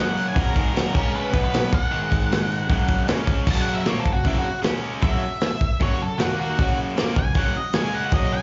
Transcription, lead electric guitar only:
0, 0, Header, 1, 2, 480
1, 0, Start_track
1, 0, Key_signature, 6, "major"
1, 0, Tempo, 389358
1, 443, Time_signature, 4, 2, 24, 8
1, 10384, End_track
2, 0, Start_track
2, 0, Title_t, "Lead electric guitar"
2, 0, Program_c, 0, 29
2, 0, Note_on_c, 0, 78, 99
2, 311, Note_off_c, 0, 78, 0
2, 352, Note_on_c, 0, 80, 89
2, 450, Note_off_c, 0, 80, 0
2, 484, Note_on_c, 0, 70, 90
2, 1374, Note_off_c, 0, 70, 0
2, 1425, Note_on_c, 0, 71, 101
2, 1764, Note_off_c, 0, 71, 0
2, 1778, Note_on_c, 0, 71, 100
2, 2142, Note_off_c, 0, 71, 0
2, 2148, Note_on_c, 0, 78, 99
2, 3771, Note_off_c, 0, 78, 0
2, 4322, Note_on_c, 0, 81, 89
2, 4454, Note_off_c, 0, 81, 0
2, 4459, Note_on_c, 0, 78, 88
2, 4610, Note_off_c, 0, 78, 0
2, 4610, Note_on_c, 0, 76, 73
2, 4802, Note_off_c, 0, 76, 0
2, 4802, Note_on_c, 0, 73, 78
2, 4929, Note_on_c, 0, 69, 84
2, 4943, Note_off_c, 0, 73, 0
2, 5084, Note_on_c, 0, 66, 72
2, 5086, Note_off_c, 0, 69, 0
2, 5263, Note_off_c, 0, 66, 0
2, 5263, Note_on_c, 0, 64, 89
2, 5406, Note_off_c, 0, 64, 0
2, 5411, Note_on_c, 0, 66, 89
2, 5645, Note_off_c, 0, 66, 0
2, 6201, Note_on_c, 0, 76, 94
2, 7140, Note_off_c, 0, 76, 0
2, 7181, Note_on_c, 0, 73, 96
2, 7411, Note_off_c, 0, 73, 0
2, 7425, Note_on_c, 0, 69, 80
2, 7624, Note_on_c, 0, 66, 88
2, 7653, Note_off_c, 0, 69, 0
2, 7871, Note_off_c, 0, 66, 0
2, 7889, Note_on_c, 0, 66, 96
2, 8356, Note_off_c, 0, 66, 0
2, 8857, Note_on_c, 0, 80, 104
2, 9087, Note_off_c, 0, 80, 0
2, 9100, Note_on_c, 0, 78, 92
2, 9328, Note_off_c, 0, 78, 0
2, 9328, Note_on_c, 0, 75, 89
2, 9545, Note_on_c, 0, 80, 112
2, 9561, Note_off_c, 0, 75, 0
2, 9789, Note_off_c, 0, 80, 0
2, 9799, Note_on_c, 0, 78, 88
2, 10025, Note_off_c, 0, 78, 0
2, 10029, Note_on_c, 0, 75, 90
2, 10264, Note_on_c, 0, 80, 100
2, 10269, Note_off_c, 0, 75, 0
2, 10384, Note_off_c, 0, 80, 0
2, 10384, End_track
0, 0, End_of_file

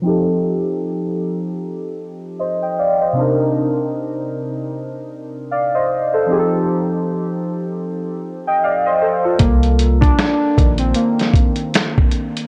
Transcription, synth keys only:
0, 0, Header, 1, 2, 480
1, 0, Start_track
1, 0, Tempo, 779221
1, 31, Time_signature, 4, 2, 24, 8
1, 7682, End_track
2, 0, Start_track
2, 0, Title_t, "Synth keys"
2, 0, Program_c, 0, 88
2, 0, Control_c, 0, 64, 127
2, 10, Note_on_c, 0, 53, 64
2, 20, Note_on_c, 0, 60, 57
2, 32, Note_on_c, 0, 63, 57
2, 39, Control_c, 0, 64, 0
2, 43, Note_on_c, 0, 67, 62
2, 53, Note_on_c, 0, 69, 69
2, 139, Control_c, 0, 64, 127
2, 1473, Note_on_c, 0, 75, 52
2, 1477, Note_on_c, 0, 72, 49
2, 1608, Note_off_c, 0, 75, 0
2, 1610, Note_off_c, 0, 72, 0
2, 1615, Note_on_c, 0, 79, 66
2, 1620, Note_on_c, 0, 75, 52
2, 1707, Note_off_c, 0, 79, 0
2, 1710, Note_off_c, 0, 75, 0
2, 1714, Note_on_c, 0, 77, 64
2, 1719, Note_on_c, 0, 74, 60
2, 1849, Note_off_c, 0, 77, 0
2, 1851, Note_off_c, 0, 74, 0
2, 1855, Note_on_c, 0, 75, 52
2, 1858, Note_on_c, 0, 72, 51
2, 1916, Note_off_c, 0, 53, 0
2, 1921, Note_off_c, 0, 60, 0
2, 1927, Note_off_c, 0, 63, 0
2, 1927, Note_on_c, 0, 48, 63
2, 1933, Note_off_c, 0, 67, 0
2, 1938, Note_off_c, 0, 69, 0
2, 1938, Note_on_c, 0, 60, 55
2, 1950, Note_on_c, 0, 62, 66
2, 1958, Control_c, 0, 64, 0
2, 1963, Note_on_c, 0, 63, 62
2, 1973, Note_on_c, 0, 70, 73
2, 2077, Control_c, 0, 64, 127
2, 2083, Note_off_c, 0, 75, 0
2, 2085, Note_off_c, 0, 72, 0
2, 3355, Note_off_c, 0, 48, 0
2, 3360, Note_off_c, 0, 60, 0
2, 3366, Note_off_c, 0, 62, 0
2, 3373, Note_off_c, 0, 63, 0
2, 3378, Note_off_c, 0, 70, 0
2, 3395, Note_on_c, 0, 77, 60
2, 3397, Note_on_c, 0, 74, 51
2, 3529, Note_off_c, 0, 77, 0
2, 3531, Note_off_c, 0, 74, 0
2, 3537, Note_on_c, 0, 75, 64
2, 3540, Note_on_c, 0, 72, 53
2, 3764, Note_off_c, 0, 75, 0
2, 3766, Note_off_c, 0, 72, 0
2, 3778, Note_on_c, 0, 72, 56
2, 3781, Note_on_c, 0, 69, 51
2, 3855, Note_on_c, 0, 53, 64
2, 3867, Note_on_c, 0, 60, 53
2, 3877, Note_on_c, 0, 63, 58
2, 3879, Control_c, 0, 64, 0
2, 3888, Note_on_c, 0, 67, 55
2, 3898, Note_on_c, 0, 68, 60
2, 3931, Note_off_c, 0, 69, 0
2, 3933, Note_off_c, 0, 68, 0
2, 3938, Note_on_c, 0, 69, 73
2, 3970, Control_c, 0, 64, 127
2, 4004, Note_off_c, 0, 72, 0
2, 5056, Note_off_c, 0, 67, 0
2, 5082, Note_off_c, 0, 69, 0
2, 5218, Note_on_c, 0, 79, 60
2, 5219, Note_on_c, 0, 75, 51
2, 5279, Note_off_c, 0, 53, 0
2, 5285, Note_off_c, 0, 60, 0
2, 5290, Note_off_c, 0, 63, 0
2, 5308, Note_off_c, 0, 79, 0
2, 5309, Note_off_c, 0, 75, 0
2, 5318, Note_on_c, 0, 77, 65
2, 5322, Note_on_c, 0, 74, 54
2, 5451, Note_off_c, 0, 77, 0
2, 5453, Note_off_c, 0, 74, 0
2, 5455, Note_on_c, 0, 75, 64
2, 5461, Note_on_c, 0, 72, 58
2, 5544, Note_off_c, 0, 72, 0
2, 5547, Note_off_c, 0, 75, 0
2, 5552, Note_on_c, 0, 72, 61
2, 5557, Note_on_c, 0, 69, 55
2, 5687, Note_off_c, 0, 69, 0
2, 5688, Note_off_c, 0, 72, 0
2, 5694, Note_on_c, 0, 69, 54
2, 5698, Note_on_c, 0, 65, 46
2, 5782, Note_on_c, 0, 58, 84
2, 5801, Control_c, 0, 64, 0
2, 5903, Control_c, 0, 64, 127
2, 5923, Note_off_c, 0, 69, 0
2, 5925, Note_off_c, 0, 65, 0
2, 6165, Note_on_c, 0, 62, 110
2, 6182, Note_off_c, 0, 58, 0
2, 6509, Note_off_c, 0, 62, 0
2, 6509, Note_on_c, 0, 51, 59
2, 6512, Note_on_c, 0, 58, 54
2, 6517, Note_on_c, 0, 62, 69
2, 6646, Note_on_c, 0, 60, 80
2, 6739, Note_off_c, 0, 58, 0
2, 6747, Note_on_c, 0, 58, 75
2, 6750, Note_off_c, 0, 60, 0
2, 6847, Note_off_c, 0, 51, 0
2, 6851, Note_off_c, 0, 62, 0
2, 7205, Note_off_c, 0, 58, 0
2, 7682, End_track
0, 0, End_of_file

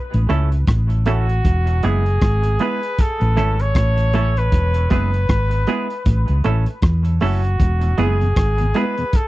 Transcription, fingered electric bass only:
0, 0, Header, 1, 2, 480
1, 0, Start_track
1, 0, Key_signature, 4, "major"
1, 0, Tempo, 768738
1, 902, Time_signature, 4, 2, 24, 8
1, 5793, End_track
2, 0, Start_track
2, 0, Title_t, "Fingered electric bass"
2, 0, Program_c, 0, 33
2, 88, Note_on_c, 0, 33, 94
2, 177, Note_off_c, 0, 33, 0
2, 188, Note_on_c, 0, 37, 84
2, 405, Note_off_c, 0, 37, 0
2, 424, Note_on_c, 0, 33, 94
2, 878, Note_off_c, 0, 33, 0
2, 905, Note_on_c, 0, 28, 97
2, 1123, Note_off_c, 0, 28, 0
2, 1150, Note_on_c, 0, 30, 92
2, 1366, Note_off_c, 0, 30, 0
2, 1387, Note_on_c, 0, 32, 87
2, 1604, Note_off_c, 0, 32, 0
2, 2008, Note_on_c, 0, 33, 96
2, 2096, Note_off_c, 0, 33, 0
2, 2107, Note_on_c, 0, 32, 86
2, 2324, Note_off_c, 0, 32, 0
2, 2346, Note_on_c, 0, 33, 95
2, 2799, Note_off_c, 0, 33, 0
2, 2825, Note_on_c, 0, 28, 94
2, 3043, Note_off_c, 0, 28, 0
2, 3068, Note_on_c, 0, 30, 83
2, 3284, Note_off_c, 0, 30, 0
2, 3306, Note_on_c, 0, 32, 80
2, 3524, Note_off_c, 0, 32, 0
2, 3786, Note_on_c, 0, 33, 103
2, 3912, Note_off_c, 0, 33, 0
2, 3928, Note_on_c, 0, 37, 88
2, 4017, Note_off_c, 0, 37, 0
2, 4028, Note_on_c, 0, 33, 82
2, 4154, Note_off_c, 0, 33, 0
2, 4264, Note_on_c, 0, 40, 85
2, 4483, Note_off_c, 0, 40, 0
2, 4508, Note_on_c, 0, 30, 86
2, 4725, Note_off_c, 0, 30, 0
2, 4747, Note_on_c, 0, 28, 106
2, 4964, Note_off_c, 0, 28, 0
2, 4985, Note_on_c, 0, 30, 91
2, 5203, Note_off_c, 0, 30, 0
2, 5224, Note_on_c, 0, 32, 88
2, 5443, Note_off_c, 0, 32, 0
2, 5793, End_track
0, 0, End_of_file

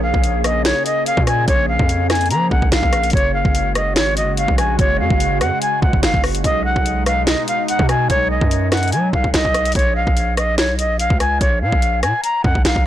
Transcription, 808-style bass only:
0, 0, Header, 1, 2, 480
1, 0, Start_track
1, 0, Tempo, 413793
1, 1713, Time_signature, 4, 2, 24, 8
1, 14925, End_track
2, 0, Start_track
2, 0, Title_t, "808-style bass"
2, 0, Program_c, 0, 38
2, 0, Note_on_c, 0, 34, 110
2, 146, Note_off_c, 0, 34, 0
2, 161, Note_on_c, 0, 34, 99
2, 852, Note_off_c, 0, 34, 0
2, 1361, Note_on_c, 0, 46, 105
2, 1699, Note_off_c, 0, 46, 0
2, 1715, Note_on_c, 0, 34, 117
2, 2067, Note_off_c, 0, 34, 0
2, 2081, Note_on_c, 0, 41, 105
2, 2675, Note_on_c, 0, 53, 98
2, 2692, Note_off_c, 0, 41, 0
2, 2902, Note_off_c, 0, 53, 0
2, 2915, Note_on_c, 0, 34, 107
2, 3036, Note_off_c, 0, 34, 0
2, 3042, Note_on_c, 0, 34, 102
2, 3150, Note_off_c, 0, 34, 0
2, 3155, Note_on_c, 0, 34, 106
2, 3273, Note_off_c, 0, 34, 0
2, 3280, Note_on_c, 0, 34, 105
2, 3619, Note_off_c, 0, 34, 0
2, 3634, Note_on_c, 0, 30, 112
2, 3986, Note_off_c, 0, 30, 0
2, 4001, Note_on_c, 0, 30, 105
2, 4595, Note_on_c, 0, 32, 102
2, 4613, Note_off_c, 0, 30, 0
2, 4898, Note_on_c, 0, 30, 102
2, 4916, Note_off_c, 0, 32, 0
2, 5186, Note_off_c, 0, 30, 0
2, 5201, Note_on_c, 0, 34, 107
2, 5539, Note_off_c, 0, 34, 0
2, 5554, Note_on_c, 0, 30, 103
2, 5795, Note_on_c, 0, 42, 98
2, 5812, Note_off_c, 0, 30, 0
2, 5915, Note_off_c, 0, 42, 0
2, 5922, Note_on_c, 0, 30, 107
2, 6275, Note_on_c, 0, 42, 99
2, 6292, Note_off_c, 0, 30, 0
2, 6395, Note_off_c, 0, 42, 0
2, 6755, Note_on_c, 0, 37, 110
2, 6876, Note_off_c, 0, 37, 0
2, 6882, Note_on_c, 0, 30, 101
2, 6990, Note_off_c, 0, 30, 0
2, 6994, Note_on_c, 0, 30, 109
2, 7113, Note_off_c, 0, 30, 0
2, 7120, Note_on_c, 0, 30, 103
2, 7459, Note_off_c, 0, 30, 0
2, 7474, Note_on_c, 0, 35, 117
2, 7826, Note_off_c, 0, 35, 0
2, 7841, Note_on_c, 0, 35, 104
2, 8532, Note_off_c, 0, 35, 0
2, 9040, Note_on_c, 0, 47, 101
2, 9379, Note_off_c, 0, 47, 0
2, 9393, Note_on_c, 0, 35, 113
2, 9746, Note_off_c, 0, 35, 0
2, 9761, Note_on_c, 0, 42, 106
2, 10354, Note_on_c, 0, 54, 97
2, 10371, Note_off_c, 0, 42, 0
2, 10582, Note_off_c, 0, 54, 0
2, 10593, Note_on_c, 0, 35, 107
2, 10716, Note_off_c, 0, 35, 0
2, 10721, Note_on_c, 0, 35, 105
2, 10826, Note_off_c, 0, 35, 0
2, 10833, Note_on_c, 0, 35, 111
2, 10952, Note_off_c, 0, 35, 0
2, 10959, Note_on_c, 0, 35, 106
2, 11299, Note_off_c, 0, 35, 0
2, 11313, Note_on_c, 0, 34, 110
2, 11666, Note_off_c, 0, 34, 0
2, 11680, Note_on_c, 0, 34, 104
2, 12273, Note_on_c, 0, 35, 98
2, 12290, Note_off_c, 0, 34, 0
2, 12578, Note_on_c, 0, 34, 101
2, 12595, Note_off_c, 0, 35, 0
2, 12866, Note_off_c, 0, 34, 0
2, 12879, Note_on_c, 0, 37, 102
2, 13219, Note_off_c, 0, 37, 0
2, 13234, Note_on_c, 0, 34, 106
2, 13474, Note_on_c, 0, 46, 95
2, 13492, Note_off_c, 0, 34, 0
2, 13595, Note_off_c, 0, 46, 0
2, 13601, Note_on_c, 0, 34, 103
2, 13954, Note_on_c, 0, 46, 96
2, 13972, Note_off_c, 0, 34, 0
2, 14075, Note_off_c, 0, 46, 0
2, 14434, Note_on_c, 0, 41, 105
2, 14556, Note_off_c, 0, 41, 0
2, 14561, Note_on_c, 0, 34, 100
2, 14666, Note_off_c, 0, 34, 0
2, 14673, Note_on_c, 0, 34, 105
2, 14793, Note_off_c, 0, 34, 0
2, 14800, Note_on_c, 0, 34, 102
2, 14925, Note_off_c, 0, 34, 0
2, 14925, End_track
0, 0, End_of_file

